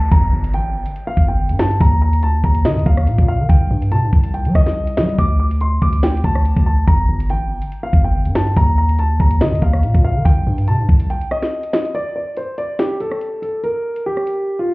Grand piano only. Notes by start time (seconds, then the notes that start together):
0.11 A#5
0.54 G5
1.07 F5
1.28 G5
1.59 A5
1.81 A#5
2.02 A#5
2.23 A5
2.44 A#5
2.65 D#5
2.86 F5
3.28 F5
3.49 G5
3.92 A5
4.34 G5
4.55 D#5
4.97 D#5
5.19 D6
5.40 D6
5.61 C6
5.82 D6
6.03 G5
6.24 A5
6.66 A5
6.87 A#5
7.30 G5
7.83 F5
8.04 G5
8.35 A5
8.57 A#5
8.78 A#5
8.99 A5
9.21 A#5
9.41 D#5
9.62 F5
10.04 F5
10.25 G5
10.68 A5
11.10 G5
11.31 D#5
11.73 D#5
11.95 D5
12.16 D5
12.37 C5
12.58 D5
12.79 G4
13.00 A4
13.42 A4
13.64 A#4
14.06 G4
14.59 F4